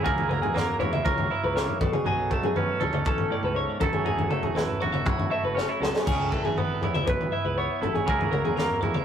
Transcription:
0.03 C#2 C#3 F#3 A#3 E4 G#4 A#4, kick, floor tom
0.18 floor tom
0.29 F#3 A#4, mid tom
0.42 E2 G#4, floor tom
0.54 A#3 A#4, snare, floor tom
0.79 E2 E4 C#5, floor tom
0.93 E5, mid tom
1.05 C#2 A#4 C#5, kick, floor tom
1.18 floor tom
1.31 E4 E5
1.44 C#2 B4
1.56 A#3 C#5, snare
1.68 floor tom
1.81 B1 B2 A4, kick, floor tom
1.93 G#4, floor tom, mid tom
2.04 B1 F#3 G#4, floor tom
2.30 A3 A4, kick
2.42 F#2 G#4, floor tom
2.56 C#4 B4, floor tom
2.80 D2 A4 C#5, floor tom
2.93 D5, mid tom
3.05 A1 C#4 A4, kick, floor tom
3.18 floor tom
3.30 A2 D5
3.43 C#2 B4
3.54 G#2 C#5
3.80 F#1 F#2 F#3 A3 E4 A4, kick, floor tom
3.93 G#4, floor tom
4.04 E1 F#3 G#4, floor tom
4.19 floor tom
4.30 A3 A4, mid tom
4.42 E1 G#4, floor tom
4.55 E4 B4, snare, floor tom
4.80 E1 F#4 C#5, floor tom
4.92 E5, mid tom
5.06 F#1 E4 C#5, kick, floor tom
5.19 floor tom
5.31 A3 E5
5.43 F#1 B4
5.55 C#4 C#5, snare
5.69 E4
5.80 C#2 F#2 A4, snare
5.96 G#4, snare
6.06 C#2 C#3 G#4, kick, floor tom, crash
6.32 E3 A4, kick
6.43 G#1 G#4, floor tom
6.58 B3 B4, floor tom
6.81 E2 E4 C#5, floor tom
6.95 E5, mid tom
7.07 B1 B4, kick, floor tom
7.21 floor tom
7.32 E4 E5
7.45 C#2 B4
7.58 B3 C#5
7.81 G#1 E4 A4, floor tom
7.95 G#4, floor tom
8.06 C#2 C#3 F#3 A#3 E4 G#4 A#4, kick, floor tom
8.21 floor tom
8.31 F#3 A#4, mid tom
8.45 E2 G#4, floor tom
8.56 A#3 A#4, snare, floor tom
8.81 E2 E4 C#5, floor tom
8.94 E5, mid tom

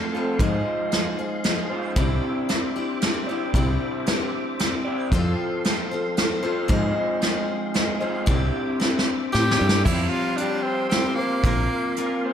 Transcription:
Already playing: F3 A3 C4 F4 A4 F5 C6
0.15 F3 A3 C4 F4 A4
0.39 G#2 F3 G#3 D#4 F4 G#4 C5, kick, closed hi-hat
0.92 F3 D#4 G#4 C5, snare, closed hi-hat
1.19 D#4 G#4 C5
1.44 F3 D#4 G#4 C5, snare, closed hi-hat
1.70 G#3 D#4 F4 C5
1.96 C2 C3 C4 D4 E4 G4 C5 D5 E5 D6, kick, closed hi-hat
2.49 C4 D4 E4 G4, snare, closed hi-hat
2.76 D4 E4 G4
3.01 C4 D4 E4 G4, snare, closed hi-hat
3.27 C4 D4 G4 D5
3.31 E4
3.54 C2 C3 C4 D4 E4 G4 D5, kick, closed hi-hat
4.06 C4 D4 E4 G4, snare, closed hi-hat
4.59 C4 D4 E4 G4, snare, closed hi-hat
4.85 C4 E4 G4 D5
5.11 F2 F3 C4 F4 A4 C5 F5 C6, kick, closed hi-hat
5.64 F3 F4 A4 C5, snare, closed hi-hat
5.91 F4 A4 C5
6.17 F3 F4 A4 C5, snare, closed hi-hat
6.43 F3 C4 F4 A4 C5
6.68 G#2 F3 G#3 C4 D#4 F4 G#4 C5, kick, closed hi-hat
6.73 D#5
7.21 F3 D#4 G#4 C5, snare, closed hi-hat
7.74 F3 D#4 G#4 C5, snare, closed hi-hat
8.00 G#3 C4 D#4 F4 G#4 C5 D#5
8.26 C2 C3 C4 D4 E4 G4 C5 E5 D6, kick, closed hi-hat
8.30 D5
8.80 C4 D4 E4 G4, snare
8.99 snare
9.32 A2 C4 D4 E4 G4, snare
9.51 snare
9.59 G2 C4 D4 E4 G4 D5
9.69 snare
9.85 F2 F3 G3 C4 E4 F4 G4 F5 C6, kick, crash
10.10 F4
10.37 G3 C4 D4, closed hi-hat
10.41 F4 G4
10.63 C4 C5
10.89 G3 C4, snare, closed hi-hat
10.94 F4 G4
11.15 A#3 C5
11.20 C4 F4 G4
11.44 A#1 A#3 C4 F4 A#4, kick, closed hi-hat
11.96 A#3 C4 F4 A#4, closed hi-hat
12.25 C5

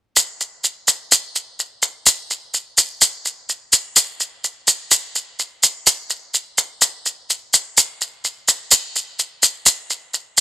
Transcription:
0.16 maracas
0.41 maracas
0.64 maracas
0.88 maracas
1.12 maracas
1.36 maracas
1.60 maracas
1.82 maracas
2.06 maracas
2.31 maracas
2.54 maracas
2.78 maracas
3.01 maracas
3.25 maracas
3.49 maracas
3.73 maracas
3.96 maracas
4.20 maracas
4.44 maracas
4.68 maracas
4.91 maracas
5.15 maracas
5.39 maracas
5.63 maracas
5.87 maracas
6.10 maracas
6.34 maracas
6.58 maracas
6.82 maracas
7.06 maracas
7.30 maracas
7.54 maracas
7.78 maracas
8.01 maracas
8.25 maracas
8.48 maracas
8.72 maracas
8.96 maracas
9.19 maracas
9.43 maracas
9.66 maracas
9.90 maracas
10.14 maracas

